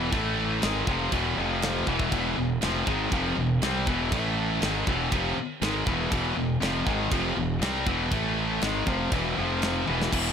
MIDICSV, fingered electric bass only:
0, 0, Header, 1, 3, 480
1, 0, Start_track
1, 0, Tempo, 500000
1, 118, Time_signature, 4, 2, 24, 8
1, 9912, End_track
2, 0, Start_track
2, 0, Title_t, "Fingered electric bass"
2, 0, Program_c, 0, 33
2, 0, Note_on_c, 0, 28, 99
2, 103, Note_off_c, 0, 28, 0
2, 123, Note_on_c, 0, 33, 92
2, 566, Note_off_c, 0, 33, 0
2, 611, Note_on_c, 0, 32, 99
2, 827, Note_off_c, 0, 32, 0
2, 841, Note_on_c, 0, 29, 88
2, 1061, Note_off_c, 0, 29, 0
2, 1079, Note_on_c, 0, 28, 83
2, 1300, Note_off_c, 0, 28, 0
2, 1322, Note_on_c, 0, 29, 91
2, 1764, Note_off_c, 0, 29, 0
2, 1798, Note_on_c, 0, 28, 91
2, 2019, Note_off_c, 0, 28, 0
2, 2038, Note_on_c, 0, 28, 96
2, 2259, Note_off_c, 0, 28, 0
2, 2281, Note_on_c, 0, 28, 72
2, 2501, Note_off_c, 0, 28, 0
2, 2522, Note_on_c, 0, 29, 93
2, 2741, Note_off_c, 0, 29, 0
2, 2756, Note_on_c, 0, 32, 93
2, 2977, Note_off_c, 0, 32, 0
2, 2996, Note_on_c, 0, 29, 91
2, 3217, Note_off_c, 0, 29, 0
2, 3230, Note_on_c, 0, 28, 81
2, 3454, Note_off_c, 0, 28, 0
2, 3476, Note_on_c, 0, 36, 97
2, 3697, Note_off_c, 0, 36, 0
2, 3716, Note_on_c, 0, 28, 87
2, 3937, Note_off_c, 0, 28, 0
2, 3954, Note_on_c, 0, 33, 110
2, 4399, Note_off_c, 0, 33, 0
2, 4435, Note_on_c, 0, 32, 97
2, 4656, Note_off_c, 0, 32, 0
2, 4677, Note_on_c, 0, 28, 91
2, 4897, Note_off_c, 0, 28, 0
2, 4919, Note_on_c, 0, 29, 96
2, 5138, Note_off_c, 0, 29, 0
2, 5392, Note_on_c, 0, 32, 91
2, 5615, Note_off_c, 0, 32, 0
2, 5640, Note_on_c, 0, 28, 102
2, 5859, Note_off_c, 0, 28, 0
2, 5874, Note_on_c, 0, 28, 101
2, 6096, Note_off_c, 0, 28, 0
2, 6116, Note_on_c, 0, 28, 77
2, 6337, Note_off_c, 0, 28, 0
2, 6351, Note_on_c, 0, 29, 96
2, 6575, Note_off_c, 0, 29, 0
2, 6595, Note_on_c, 0, 32, 100
2, 6817, Note_off_c, 0, 32, 0
2, 6831, Note_on_c, 0, 29, 104
2, 7055, Note_off_c, 0, 29, 0
2, 7072, Note_on_c, 0, 28, 84
2, 7296, Note_off_c, 0, 28, 0
2, 7310, Note_on_c, 0, 36, 103
2, 7535, Note_off_c, 0, 36, 0
2, 7557, Note_on_c, 0, 28, 97
2, 7778, Note_off_c, 0, 28, 0
2, 7793, Note_on_c, 0, 33, 106
2, 8240, Note_off_c, 0, 33, 0
2, 8273, Note_on_c, 0, 32, 99
2, 8497, Note_off_c, 0, 32, 0
2, 8515, Note_on_c, 0, 29, 91
2, 8738, Note_off_c, 0, 29, 0
2, 8754, Note_on_c, 0, 28, 87
2, 8978, Note_off_c, 0, 28, 0
2, 9007, Note_on_c, 0, 29, 93
2, 9448, Note_off_c, 0, 29, 0
2, 9489, Note_on_c, 0, 28, 102
2, 9706, Note_off_c, 0, 28, 0
2, 9722, Note_on_c, 0, 28, 89
2, 9912, Note_off_c, 0, 28, 0
2, 9912, End_track
3, 0, Start_track
3, 0, Title_t, "Muted fingered electric bass strokes"
3, 5160, Note_on_c, 9, 29, 45
3, 5256, Note_off_c, 9, 29, 0
3, 9912, End_track
0, 0, End_of_file